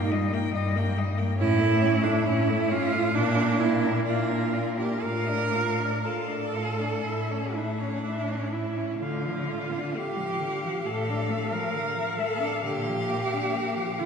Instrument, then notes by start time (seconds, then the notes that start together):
cello
Already playing: G2 A#3 D#4 G5
0.12 G3 D#5
0.33 A#3 G5
0.53 G2 G3 D#5
0.76 A#3 G5
0.98 G3 D#5
1.18 A#3 G5
1.37 A2 C#4 E4 C#5
1.59 A3 E5
1.81 C#4 C#5
2.03 A3 D4 E5
2.25 A2 C#4 E4 C#5
2.48 A3 E5
2.69 C#4 F4 C#5
2.92 A3 E5
3.14 A#2 A#3 D4 D5
3.36 D4 A#4
3.58 A#3 E4 D5
3.82 D4 A#4
4.05 A#2 A#3 F4 D5
4.28 D4 A#4
4.53 A#3 D5
4.77 D4 G4 A#4
5.02 A2 F4 A#4 F5
5.28 D4 D5
5.53 F4 F5
5.79 D4 D5
6.04 A2 F4 A4 F5
6.28 D4 D5
6.55 F4 F5
6.79 D4 D5
7.06 A2 E4 E5
7.30 C#4 C#5
7.55 D4 E4 E5
7.79 C#4 C#5
8.03 A2 E4 E5
8.28 C#4 C#5
8.52 E4 E5
8.77 C#4 C#5
8.99 D3 F4 F5
9.25 F3
9.49 A3
9.72 D4
9.95 A3 G4
10.17 F3
10.41 D3
10.65 F3
10.86 A2 A3 A4
11.09 D4
11.30 A3
11.53 F3 A#4
11.73 D3
11.95 F3
12.18 A3 A4
12.40 D4
12.63 A#2 D3 G4
12.87 F3
13.09 A#3
13.33 D4
13.54 A#3
13.75 F3
13.98 D3 F4